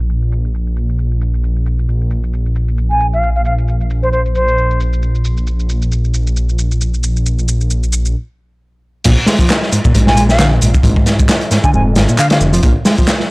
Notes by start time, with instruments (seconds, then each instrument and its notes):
Already playing: detuned saw bass A#1
0.10 shaker
0.22 shaker
0.32 shaker
0.45 shaker
0.54 shaker
0.67 shaker
0.76 shaker
0.89 shaker
0.99 shaker
1.12 shaker
1.21 shaker
1.34 shaker
1.44 shaker
1.56 shaker
1.66 shaker
1.79 shaker
1.88 detuned saw bass A#1, shaker
2.01 shaker
2.11 shaker
2.23 shaker
2.33 shaker
2.46 shaker
2.56 shaker
2.68 shaker
2.78 shaker
2.91 flute G#5, shaker
3.00 shaker
3.13 flute F5, shaker
3.23 shaker
3.35 flute F5, shaker
3.45 flute F5, shaker
3.58 shaker
3.68 shaker
3.81 shaker
3.90 shaker
4.03 flute C5, shaker
4.12 flute C5, shaker
4.26 shaker
4.34 flute C5, shaker
4.48 shaker
4.58 shaker
4.71 shaker
4.80 shaker
4.93 shaker
5.03 shaker
5.15 shaker
5.25 shaker
5.37 shaker
5.47 shaker
5.60 shaker
5.69 shaker
5.82 shaker
5.92 shaker
6.04 shaker
6.14 shaker
6.27 shaker
6.37 shaker
6.49 shaker
6.59 shaker
6.71 shaker
6.81 shaker
6.94 shaker
7.03 shaker
7.16 shaker
7.26 shaker
7.39 shaker
7.48 shaker
7.61 shaker
7.70 shaker
7.83 shaker
7.93 shaker
8.05 shaker
9.04 detuned saw bass A#1, picked electric bass A#2, kick, closed hi-hat, crash, shaker
9.26 picked electric bass G#3, snare, open hi-hat, shaker
9.39 picked electric bass F3, kick, shaker
9.50 snare, clap, closed hi-hat, shaker
9.62 snare
9.72 picked electric bass G#2, closed hi-hat, shaker
9.85 picked electric bass A#2, kick, shaker
9.95 detuned saw bass A#1, picked electric bass G#2, closed hi-hat, shaker
10.07 flute G#5, snare
10.17 picked electric bass G#3, closed hi-hat, shaker
10.29 flute F5, snare, shaker
10.39 picked electric bass D3, snare, clap, closed hi-hat, shaker
10.62 detuned saw bass A#1, picked electric bass G#2, closed hi-hat, shaker
10.74 kick, shaker
10.83 detuned saw bass A#1, picked electric bass G#2, kick, closed hi-hat, shaker
10.96 kick
11.06 snare, closed hi-hat, shaker
11.19 kick, shaker
11.29 snare, clap, closed hi-hat, shaker
11.41 closed hi-hat
11.51 picked electric bass G#2, snare, closed hi-hat, shaker
11.64 picked electric bass D3, flute G#5, kick, shaker
11.73 detuned saw bass F1, picked electric bass G#2, flute G#5, shaker
11.96 detuned saw bass G#1, snare, closed hi-hat, shaker
12.08 picked electric bass A#2, shaker
12.18 picked electric bass D3, flute F5, clap, closed hi-hat, shaker
12.30 flute F5, snare, closed hi-hat
12.41 detuned saw bass F1, shaker
12.53 picked electric bass F3, closed hi-hat, shaker
12.63 detuned saw bass A#1, picked electric bass A#2, kick, closed hi-hat, shaker
12.85 picked electric bass G#3, snare, open hi-hat, shaker
12.98 picked electric bass F3, kick, shaker
13.07 snare, clap, closed hi-hat, shaker
13.20 snare